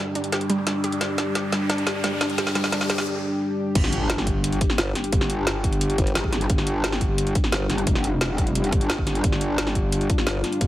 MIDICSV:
0, 0, Header, 1, 8, 480
1, 0, Start_track
1, 0, Tempo, 342857
1, 1415, Time_signature, 4, 2, 24, 8
1, 14939, End_track
2, 0, Start_track
2, 0, Title_t, "Analog synth pad"
2, 0, Program_c, 0, 89
2, 0, Note_on_c, 0, 55, 82
2, 0, Note_on_c, 0, 62, 73
2, 0, Note_on_c, 0, 67, 89
2, 5198, Note_off_c, 0, 55, 0
2, 5198, Note_off_c, 0, 62, 0
2, 5198, Note_off_c, 0, 67, 0
2, 5254, Note_on_c, 0, 55, 82
2, 5254, Note_on_c, 0, 62, 75
2, 5254, Note_on_c, 0, 67, 90
2, 12903, Note_off_c, 0, 67, 0
2, 12933, Note_on_c, 0, 65, 90
2, 14939, Note_off_c, 0, 55, 0
2, 14939, Note_off_c, 0, 62, 0
2, 14939, Note_off_c, 0, 65, 0
2, 14939, End_track
3, 0, Start_track
3, 0, Title_t, "Synth arpeggio sound"
3, 0, Program_c, 1, 84
3, 215, Note_on_c, 1, 62, 75
3, 409, Note_off_c, 1, 62, 0
3, 456, Note_on_c, 1, 67, 85
3, 585, Note_off_c, 1, 67, 0
3, 696, Note_on_c, 1, 55, 81
3, 825, Note_off_c, 1, 55, 0
3, 936, Note_on_c, 1, 62, 76
3, 1130, Note_off_c, 1, 62, 0
3, 1176, Note_on_c, 1, 67, 74
3, 1305, Note_off_c, 1, 67, 0
3, 1415, Note_on_c, 1, 55, 86
3, 1545, Note_off_c, 1, 55, 0
3, 1655, Note_on_c, 1, 62, 76
3, 1849, Note_off_c, 1, 62, 0
3, 1896, Note_on_c, 1, 67, 76
3, 2025, Note_off_c, 1, 67, 0
3, 2134, Note_on_c, 1, 55, 75
3, 2264, Note_off_c, 1, 55, 0
3, 2374, Note_on_c, 1, 62, 86
3, 2569, Note_off_c, 1, 62, 0
3, 2615, Note_on_c, 1, 67, 78
3, 2744, Note_off_c, 1, 67, 0
3, 2855, Note_on_c, 1, 55, 79
3, 2984, Note_off_c, 1, 55, 0
3, 3094, Note_on_c, 1, 62, 78
3, 3289, Note_off_c, 1, 62, 0
3, 3334, Note_on_c, 1, 67, 83
3, 3464, Note_off_c, 1, 67, 0
3, 3574, Note_on_c, 1, 55, 77
3, 3704, Note_off_c, 1, 55, 0
3, 3814, Note_on_c, 1, 62, 76
3, 4009, Note_off_c, 1, 62, 0
3, 4054, Note_on_c, 1, 67, 75
3, 4184, Note_off_c, 1, 67, 0
3, 14939, End_track
4, 0, Start_track
4, 0, Title_t, "Wobble bass"
4, 0, Program_c, 2, 39
4, 5256, Note_on_c, 2, 31, 95
4, 6436, Note_off_c, 2, 31, 0
4, 7176, Note_on_c, 2, 31, 96
4, 8356, Note_off_c, 2, 31, 0
4, 8616, Note_on_c, 2, 32, 96
4, 9076, Note_off_c, 2, 32, 0
4, 9096, Note_on_c, 2, 31, 93
4, 10276, Note_off_c, 2, 31, 0
4, 10775, Note_on_c, 2, 31, 98
4, 10996, Note_off_c, 2, 31, 0
4, 11017, Note_on_c, 2, 29, 98
4, 12197, Note_off_c, 2, 29, 0
4, 12216, Note_on_c, 2, 31, 101
4, 12916, Note_off_c, 2, 31, 0
4, 12936, Note_on_c, 2, 31, 93
4, 14116, Note_off_c, 2, 31, 0
4, 14856, Note_on_c, 2, 31, 98
4, 14939, Note_off_c, 2, 31, 0
4, 14939, End_track
5, 0, Start_track
5, 0, Title_t, "Wobble bass"
5, 0, Program_c, 3, 39
5, 6697, Note_on_c, 3, 31, 97
5, 6917, Note_off_c, 3, 31, 0
5, 8376, Note_on_c, 3, 31, 100
5, 8597, Note_off_c, 3, 31, 0
5, 10535, Note_on_c, 3, 31, 94
5, 10756, Note_off_c, 3, 31, 0
5, 14374, Note_on_c, 3, 31, 96
5, 14596, Note_off_c, 3, 31, 0
5, 14939, End_track
6, 0, Start_track
6, 0, Title_t, "Impact"
6, 0, Program_c, 4, 103
6, 5255, Note_on_c, 4, 60, 77
6, 7175, Note_off_c, 4, 60, 0
6, 14939, End_track
7, 0, Start_track
7, 0, Title_t, "Riser"
7, 0, Program_c, 5, 103
7, 0, Note_on_c, 5, 60, 83
7, 4295, Note_off_c, 5, 60, 0
7, 14939, End_track
8, 0, Start_track
8, 0, Title_t, "Drums"
8, 214, Note_on_c, 9, 42, 66
8, 334, Note_off_c, 9, 42, 0
8, 334, Note_on_c, 9, 42, 38
8, 454, Note_off_c, 9, 42, 0
8, 454, Note_on_c, 9, 38, 63
8, 454, Note_on_c, 9, 42, 91
8, 575, Note_off_c, 9, 42, 0
8, 575, Note_on_c, 9, 42, 36
8, 594, Note_off_c, 9, 38, 0
8, 694, Note_off_c, 9, 42, 0
8, 694, Note_on_c, 9, 42, 68
8, 834, Note_off_c, 9, 42, 0
8, 934, Note_on_c, 9, 38, 68
8, 934, Note_on_c, 9, 42, 90
8, 1074, Note_off_c, 9, 38, 0
8, 1074, Note_off_c, 9, 42, 0
8, 1173, Note_on_c, 9, 42, 70
8, 1294, Note_off_c, 9, 42, 0
8, 1294, Note_on_c, 9, 42, 37
8, 1414, Note_off_c, 9, 42, 0
8, 1414, Note_on_c, 9, 38, 73
8, 1414, Note_on_c, 9, 42, 92
8, 1554, Note_off_c, 9, 38, 0
8, 1554, Note_off_c, 9, 42, 0
8, 1653, Note_on_c, 9, 38, 74
8, 1653, Note_on_c, 9, 42, 64
8, 1793, Note_off_c, 9, 38, 0
8, 1793, Note_off_c, 9, 42, 0
8, 1894, Note_on_c, 9, 38, 75
8, 1894, Note_on_c, 9, 42, 88
8, 2034, Note_off_c, 9, 38, 0
8, 2034, Note_off_c, 9, 42, 0
8, 2134, Note_on_c, 9, 38, 81
8, 2134, Note_on_c, 9, 42, 66
8, 2274, Note_off_c, 9, 38, 0
8, 2274, Note_off_c, 9, 42, 0
8, 2374, Note_on_c, 9, 38, 79
8, 2374, Note_on_c, 9, 42, 86
8, 2494, Note_off_c, 9, 42, 0
8, 2494, Note_on_c, 9, 42, 35
8, 2514, Note_off_c, 9, 38, 0
8, 2614, Note_off_c, 9, 42, 0
8, 2614, Note_on_c, 9, 38, 86
8, 2614, Note_on_c, 9, 42, 64
8, 2754, Note_off_c, 9, 38, 0
8, 2754, Note_off_c, 9, 42, 0
8, 2853, Note_on_c, 9, 38, 82
8, 2853, Note_on_c, 9, 42, 86
8, 2993, Note_off_c, 9, 38, 0
8, 2993, Note_off_c, 9, 42, 0
8, 3093, Note_on_c, 9, 38, 94
8, 3093, Note_on_c, 9, 42, 65
8, 3214, Note_off_c, 9, 42, 0
8, 3214, Note_on_c, 9, 42, 37
8, 3233, Note_off_c, 9, 38, 0
8, 3334, Note_off_c, 9, 42, 0
8, 3334, Note_on_c, 9, 38, 94
8, 3334, Note_on_c, 9, 42, 89
8, 3455, Note_off_c, 9, 38, 0
8, 3455, Note_on_c, 9, 38, 88
8, 3474, Note_off_c, 9, 42, 0
8, 3574, Note_off_c, 9, 38, 0
8, 3574, Note_on_c, 9, 38, 92
8, 3574, Note_on_c, 9, 42, 61
8, 3694, Note_off_c, 9, 38, 0
8, 3694, Note_on_c, 9, 38, 87
8, 3714, Note_off_c, 9, 42, 0
8, 3814, Note_off_c, 9, 38, 0
8, 3814, Note_on_c, 9, 38, 98
8, 3814, Note_on_c, 9, 42, 88
8, 3934, Note_off_c, 9, 38, 0
8, 3934, Note_on_c, 9, 38, 88
8, 3954, Note_off_c, 9, 42, 0
8, 4055, Note_off_c, 9, 38, 0
8, 4055, Note_on_c, 9, 38, 104
8, 4055, Note_on_c, 9, 42, 66
8, 4175, Note_off_c, 9, 38, 0
8, 4175, Note_off_c, 9, 42, 0
8, 4175, Note_on_c, 9, 38, 92
8, 4175, Note_on_c, 9, 42, 37
8, 4315, Note_off_c, 9, 38, 0
8, 4315, Note_off_c, 9, 42, 0
8, 5255, Note_on_c, 9, 42, 98
8, 5255, Note_on_c, 9, 49, 102
8, 5256, Note_on_c, 9, 36, 116
8, 5375, Note_on_c, 9, 40, 38
8, 5395, Note_off_c, 9, 42, 0
8, 5395, Note_off_c, 9, 49, 0
8, 5396, Note_off_c, 9, 36, 0
8, 5495, Note_on_c, 9, 42, 72
8, 5515, Note_off_c, 9, 40, 0
8, 5635, Note_off_c, 9, 42, 0
8, 5735, Note_on_c, 9, 38, 114
8, 5735, Note_on_c, 9, 42, 95
8, 5856, Note_on_c, 9, 40, 58
8, 5875, Note_off_c, 9, 38, 0
8, 5875, Note_off_c, 9, 42, 0
8, 5976, Note_on_c, 9, 36, 60
8, 5976, Note_on_c, 9, 42, 73
8, 5996, Note_off_c, 9, 40, 0
8, 6116, Note_off_c, 9, 36, 0
8, 6116, Note_off_c, 9, 42, 0
8, 6216, Note_on_c, 9, 42, 98
8, 6335, Note_off_c, 9, 42, 0
8, 6335, Note_on_c, 9, 42, 38
8, 6455, Note_off_c, 9, 42, 0
8, 6455, Note_on_c, 9, 42, 71
8, 6456, Note_on_c, 9, 36, 105
8, 6575, Note_on_c, 9, 40, 39
8, 6595, Note_off_c, 9, 42, 0
8, 6596, Note_off_c, 9, 36, 0
8, 6695, Note_on_c, 9, 38, 114
8, 6695, Note_on_c, 9, 42, 97
8, 6715, Note_off_c, 9, 40, 0
8, 6835, Note_off_c, 9, 38, 0
8, 6835, Note_off_c, 9, 42, 0
8, 6935, Note_on_c, 9, 40, 39
8, 6935, Note_on_c, 9, 42, 69
8, 7056, Note_off_c, 9, 42, 0
8, 7056, Note_on_c, 9, 42, 40
8, 7075, Note_off_c, 9, 40, 0
8, 7175, Note_off_c, 9, 42, 0
8, 7175, Note_on_c, 9, 42, 94
8, 7176, Note_on_c, 9, 36, 124
8, 7296, Note_on_c, 9, 40, 39
8, 7315, Note_off_c, 9, 42, 0
8, 7316, Note_off_c, 9, 36, 0
8, 7416, Note_on_c, 9, 42, 67
8, 7436, Note_off_c, 9, 40, 0
8, 7556, Note_off_c, 9, 42, 0
8, 7656, Note_on_c, 9, 38, 124
8, 7656, Note_on_c, 9, 42, 97
8, 7796, Note_off_c, 9, 38, 0
8, 7796, Note_off_c, 9, 42, 0
8, 7896, Note_on_c, 9, 36, 62
8, 7896, Note_on_c, 9, 42, 68
8, 8016, Note_off_c, 9, 42, 0
8, 8016, Note_on_c, 9, 42, 37
8, 8036, Note_off_c, 9, 36, 0
8, 8136, Note_off_c, 9, 42, 0
8, 8136, Note_on_c, 9, 42, 93
8, 8256, Note_off_c, 9, 42, 0
8, 8256, Note_on_c, 9, 42, 36
8, 8376, Note_off_c, 9, 42, 0
8, 8376, Note_on_c, 9, 36, 113
8, 8376, Note_on_c, 9, 42, 68
8, 8496, Note_off_c, 9, 42, 0
8, 8496, Note_on_c, 9, 42, 38
8, 8516, Note_off_c, 9, 36, 0
8, 8615, Note_off_c, 9, 42, 0
8, 8615, Note_on_c, 9, 38, 122
8, 8615, Note_on_c, 9, 42, 91
8, 8736, Note_on_c, 9, 36, 63
8, 8755, Note_off_c, 9, 38, 0
8, 8755, Note_off_c, 9, 42, 0
8, 8855, Note_on_c, 9, 40, 38
8, 8855, Note_on_c, 9, 42, 67
8, 8876, Note_off_c, 9, 36, 0
8, 8975, Note_off_c, 9, 42, 0
8, 8975, Note_on_c, 9, 42, 36
8, 8995, Note_off_c, 9, 40, 0
8, 9094, Note_off_c, 9, 42, 0
8, 9094, Note_on_c, 9, 42, 90
8, 9096, Note_on_c, 9, 36, 120
8, 9215, Note_on_c, 9, 40, 38
8, 9234, Note_off_c, 9, 42, 0
8, 9236, Note_off_c, 9, 36, 0
8, 9334, Note_on_c, 9, 42, 65
8, 9355, Note_off_c, 9, 40, 0
8, 9474, Note_off_c, 9, 42, 0
8, 9574, Note_on_c, 9, 38, 125
8, 9574, Note_on_c, 9, 42, 88
8, 9694, Note_on_c, 9, 40, 57
8, 9714, Note_off_c, 9, 38, 0
8, 9714, Note_off_c, 9, 42, 0
8, 9814, Note_on_c, 9, 42, 64
8, 9816, Note_on_c, 9, 36, 62
8, 9834, Note_off_c, 9, 40, 0
8, 9954, Note_off_c, 9, 42, 0
8, 9956, Note_off_c, 9, 36, 0
8, 10054, Note_on_c, 9, 42, 89
8, 10174, Note_off_c, 9, 42, 0
8, 10174, Note_on_c, 9, 42, 36
8, 10294, Note_off_c, 9, 42, 0
8, 10294, Note_on_c, 9, 42, 64
8, 10296, Note_on_c, 9, 36, 115
8, 10414, Note_on_c, 9, 40, 38
8, 10434, Note_off_c, 9, 42, 0
8, 10436, Note_off_c, 9, 36, 0
8, 10534, Note_on_c, 9, 38, 121
8, 10534, Note_on_c, 9, 42, 89
8, 10554, Note_off_c, 9, 40, 0
8, 10674, Note_off_c, 9, 38, 0
8, 10674, Note_off_c, 9, 42, 0
8, 10774, Note_on_c, 9, 40, 37
8, 10774, Note_on_c, 9, 42, 66
8, 10895, Note_off_c, 9, 42, 0
8, 10895, Note_on_c, 9, 42, 36
8, 10914, Note_off_c, 9, 40, 0
8, 11016, Note_off_c, 9, 42, 0
8, 11016, Note_on_c, 9, 36, 118
8, 11016, Note_on_c, 9, 42, 88
8, 11136, Note_on_c, 9, 40, 37
8, 11156, Note_off_c, 9, 36, 0
8, 11156, Note_off_c, 9, 42, 0
8, 11256, Note_on_c, 9, 42, 64
8, 11276, Note_off_c, 9, 40, 0
8, 11396, Note_off_c, 9, 42, 0
8, 11495, Note_on_c, 9, 38, 121
8, 11495, Note_on_c, 9, 42, 86
8, 11635, Note_off_c, 9, 38, 0
8, 11635, Note_off_c, 9, 42, 0
8, 11736, Note_on_c, 9, 36, 61
8, 11736, Note_on_c, 9, 42, 62
8, 11856, Note_off_c, 9, 42, 0
8, 11856, Note_on_c, 9, 42, 36
8, 11876, Note_off_c, 9, 36, 0
8, 11976, Note_off_c, 9, 42, 0
8, 11976, Note_on_c, 9, 42, 88
8, 12095, Note_off_c, 9, 42, 0
8, 12095, Note_on_c, 9, 42, 35
8, 12215, Note_off_c, 9, 42, 0
8, 12215, Note_on_c, 9, 42, 61
8, 12216, Note_on_c, 9, 36, 110
8, 12335, Note_off_c, 9, 42, 0
8, 12335, Note_on_c, 9, 42, 37
8, 12356, Note_off_c, 9, 36, 0
8, 12455, Note_off_c, 9, 42, 0
8, 12455, Note_on_c, 9, 38, 117
8, 12455, Note_on_c, 9, 42, 87
8, 12576, Note_on_c, 9, 36, 63
8, 12595, Note_off_c, 9, 38, 0
8, 12595, Note_off_c, 9, 42, 0
8, 12694, Note_on_c, 9, 40, 35
8, 12694, Note_on_c, 9, 42, 62
8, 12716, Note_off_c, 9, 36, 0
8, 12815, Note_off_c, 9, 42, 0
8, 12815, Note_on_c, 9, 42, 36
8, 12834, Note_off_c, 9, 40, 0
8, 12934, Note_off_c, 9, 42, 0
8, 12934, Note_on_c, 9, 42, 90
8, 12936, Note_on_c, 9, 36, 120
8, 13054, Note_on_c, 9, 40, 35
8, 13074, Note_off_c, 9, 42, 0
8, 13076, Note_off_c, 9, 36, 0
8, 13174, Note_on_c, 9, 42, 63
8, 13194, Note_off_c, 9, 40, 0
8, 13314, Note_off_c, 9, 42, 0
8, 13415, Note_on_c, 9, 38, 122
8, 13415, Note_on_c, 9, 42, 92
8, 13534, Note_on_c, 9, 40, 54
8, 13555, Note_off_c, 9, 38, 0
8, 13555, Note_off_c, 9, 42, 0
8, 13654, Note_on_c, 9, 42, 65
8, 13656, Note_on_c, 9, 36, 59
8, 13674, Note_off_c, 9, 40, 0
8, 13794, Note_off_c, 9, 42, 0
8, 13796, Note_off_c, 9, 36, 0
8, 13894, Note_on_c, 9, 42, 90
8, 14014, Note_off_c, 9, 42, 0
8, 14014, Note_on_c, 9, 42, 35
8, 14135, Note_off_c, 9, 42, 0
8, 14135, Note_on_c, 9, 42, 64
8, 14136, Note_on_c, 9, 36, 105
8, 14255, Note_on_c, 9, 40, 34
8, 14275, Note_off_c, 9, 42, 0
8, 14276, Note_off_c, 9, 36, 0
8, 14374, Note_on_c, 9, 38, 119
8, 14374, Note_on_c, 9, 42, 91
8, 14395, Note_off_c, 9, 40, 0
8, 14514, Note_off_c, 9, 38, 0
8, 14514, Note_off_c, 9, 42, 0
8, 14614, Note_on_c, 9, 40, 34
8, 14614, Note_on_c, 9, 42, 67
8, 14734, Note_off_c, 9, 42, 0
8, 14734, Note_on_c, 9, 42, 35
8, 14754, Note_off_c, 9, 40, 0
8, 14854, Note_off_c, 9, 42, 0
8, 14854, Note_on_c, 9, 42, 94
8, 14856, Note_on_c, 9, 36, 111
8, 14939, Note_off_c, 9, 36, 0
8, 14939, Note_off_c, 9, 42, 0
8, 14939, End_track
0, 0, End_of_file